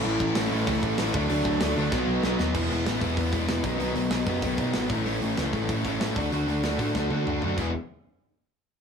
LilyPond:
<<
  \new Staff \with { instrumentName = "Distorted electric guitar" } { \time 4/4 \key e \major \tempo 4 = 191 <a, e a cis' e'>4 <a, e a cis' e'>8 <a, e a cis' e'>8 <a, e a cis' e'>4 <a, e a cis' e'>8 <d fis a d'>8 | <d fis a d'>4 <d fis a d'>8 <d fis a d'>8 <b, fis b dis'>4 <b, fis b dis'>8 <b, fis b dis'>8 | <e gis b e'>8 <e gis b e'>8 <e gis b e'>8 <e gis b e'>8 <e gis b e'>8 <e gis b e'>8 <e gis b e'>8 <b, dis fis b dis'>8 | <b, dis fis b dis'>8 <b, dis fis b dis'>8 <b, dis fis b dis'>8 <b, dis fis b dis'>8 <b, dis fis b dis'>8 <b, dis fis b dis'>8 <b, dis fis b dis'>8 <a, e a cis' e'>8 |
<a, e a cis' e'>8 <a, e a cis' e'>8 <a, e a cis' e'>8 <a, e a cis' e'>8 <a, e a cis' e'>8 <a, e a cis' e'>8 <a, e a cis' e'>8 <d a d' fis'>8 | <d a d' fis'>8 <d a d' fis'>8 <d a d' fis'>8 <d a d' fis'>8 <d a d' fis'>8 <d a d' fis'>8 <d a d' fis'>8 <d a d' fis'>8 | <e gis b e'>8 r2. r8 | }
  \new Staff \with { instrumentName = "Distorted electric guitar" } { \time 4/4 \key e \major <a, e a cis' e'>4 <a, e a cis' e'>8 <a, e a cis' e'>8 <a, e a cis' e'>4 <a, e a cis' e'>8 <d fis a d'>8 | <d fis a d'>4 <d fis a d'>8 <d fis a d'>8 <b, fis b dis'>4 <b, fis b dis'>8 <b, fis b dis'>8 | <e gis b e'>8 <e gis b e'>8 <e gis b e'>8 <e gis b e'>8 <e gis b e'>8 <e gis b e'>8 <e gis b e'>8 <b, dis fis b dis'>8 | <b, dis fis b dis'>8 <b, dis fis b dis'>8 <b, dis fis b dis'>8 <b, dis fis b dis'>8 <b, dis fis b dis'>8 <b, dis fis b dis'>8 <b, dis fis b dis'>8 <a, e a cis' e'>8 |
<a, e a cis' e'>8 <a, e a cis' e'>8 <a, e a cis' e'>8 <a, e a cis' e'>8 <a, e a cis' e'>8 <a, e a cis' e'>8 <a, e a cis' e'>8 <d a d' fis'>8 | <d a d' fis'>8 <d a d' fis'>8 <d a d' fis'>8 <d a d' fis'>8 <d a d' fis'>8 <d a d' fis'>8 <d a d' fis'>8 <d a d' fis'>8 | <e gis b e' gis'>8 r2. r8 | }
  \new Staff \with { instrumentName = "Distorted electric guitar" } { \clef bass \time 4/4 \key e \major <a, e a>4. <a, e a>2 <d a d'>8~ | <d a d'>4. <d a d'>8 <b, fis b>2 | r1 | r1 |
r1 | r1 | r1 | }
  \new Staff \with { instrumentName = "Picked electric bass" } { \clef bass \time 4/4 \key e \major a,,8 a,,8 a,,8 a,,8 cis,8 a,,8 a,,8 d,8 | d,8 d,8 d,8 d,8 b,,8 b,,8 b,,8 dis,8 | e,,8 e,,8 a,,8 e,,8 e,8 e,,8 e,,8 b,,8 | b,,8 b,,8 b,,8 fis,8 b,,8 b,8 gis,,8 a,,8 |
a,,8 a,,8 cis,8 a,,8 a,8 a,,8 a,,8 d,8 | d,8 d,8 d,8 a,8 d,8 d8 d,8 fis,8 | e,,8 r2. r8 | }
  \new DrumStaff \with { instrumentName = "Drums" } \drummode { \time 4/4 r8 bd8 <hho sn>4 <hho bd>8 bd8 <hho sn>8 bd8 | hho8 bd8 <hho sn>4 <bd sn>4 sn8 sn8 | <cymc bd>8 hho8 <hho sn>8 <hho bd>8 <hho bd>8 <hho bd>8 <hho sn>8 <hho bd>8 | hho8 hho8 <hho sn>8 <hho bd>8 <hho bd>8 <hho bd>8 <hho sn>8 <hho bd>8 |
hho8 hho8 <hho sn>8 <hho bd>8 <hho bd>8 <hho bd>8 <hho sn>8 <hho bd>8 | hho8 hho8 <hho sn>8 <hho bd>8 <bd sn>8 tommh8 toml8 tomfh8 | <cymc bd>4 r4 r4 r4 | }
>>